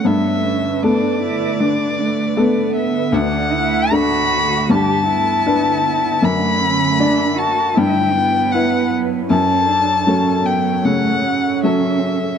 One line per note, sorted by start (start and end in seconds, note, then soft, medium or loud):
0.00 3.12 A3 medium
0.04 0.80 G2 medium
0.04 6.20 D3 medium
0.04 0.44 B3 medium
0.04 3.13 B4 medium
0.04 0.85 E5 medium
0.42 0.84 C#4 medium
0.82 1.56 A3 soft
0.82 1.56 B3 soft
0.82 1.21 D4 medium
0.82 1.56 A4 soft
0.82 2.75 D5 medium
1.22 1.62 E4 medium
1.60 2.83 D3 soft
1.60 2.00 D4 medium
1.99 2.39 A3 medium
2.37 3.09 A3 soft
2.37 3.09 B3 medium
2.37 3.14 B3 medium
2.37 3.09 A4 medium
2.75 3.16 E5 medium
3.12 3.89 D2 medium
3.12 4.65 A3 medium
3.12 3.53 D4 medium
3.12 7.77 F#5 medium
3.12 3.94 F#5 medium
3.52 3.94 E4 medium
3.92 4.65 D4 medium
3.92 4.71 F#4 medium
3.92 4.65 A4 medium
3.92 4.73 B5 loud
4.69 5.44 G2 medium
4.69 6.22 B3 medium
4.69 5.07 G4 medium
4.69 6.25 A5 loud
5.08 6.24 E4 medium
5.46 6.19 D4 medium
5.46 6.19 B4 medium
6.21 6.97 F#2 medium
6.21 7.72 D3 medium
6.21 7.76 A3 medium
6.21 6.61 D4 medium
6.21 7.40 B5 loud
6.60 7.00 C#4 medium
6.99 7.37 D4 medium
6.99 7.72 D4 medium
6.99 7.73 D5 medium
7.36 7.75 F#4 medium
7.36 7.79 A5 loud
7.74 8.51 G2 medium
7.74 12.38 F#3 medium
7.74 8.14 E4 medium
7.74 9.30 E4 medium
7.74 9.30 B4 medium
7.74 8.54 G5 loud
8.12 9.26 B3 medium
8.52 9.26 E4 medium
8.52 9.26 B4 medium
8.52 8.91 F#5 medium
9.27 10.04 F#2 medium
9.27 9.67 C#4 medium
9.27 12.38 A4 medium
9.27 12.38 C#5 medium
9.27 10.48 A5 loud
9.66 10.05 D4 medium
10.03 10.80 F#3 medium
10.03 10.42 C#4 medium
10.03 10.80 C#4 medium
10.08 10.81 A4 medium
10.43 10.84 B3 medium
10.43 10.87 G5 medium
10.82 12.12 C#3 medium
10.82 11.24 A3 medium
10.82 11.63 F#5 medium
11.22 12.38 C#4 medium
11.63 12.38 F#3 soft
11.63 12.38 C#4 soft
11.63 12.38 A4 medium
11.63 12.38 E5 medium